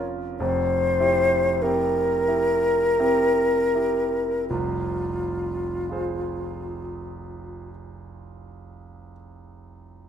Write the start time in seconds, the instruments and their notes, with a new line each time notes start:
Already playing: grand piano C#4 F4 A#4
0.40 grand piano F1 F2, flute C5
1.00 grand piano E4 G4
1.62 grand piano C4 E4 G4, flute A#4
2.28 grand piano E4 G4
3.00 grand piano C4 E4 G4
3.75 grand piano E4 G4
4.49 grand piano F1 C2, flute F4
5.89 grand piano F4 G#4 C5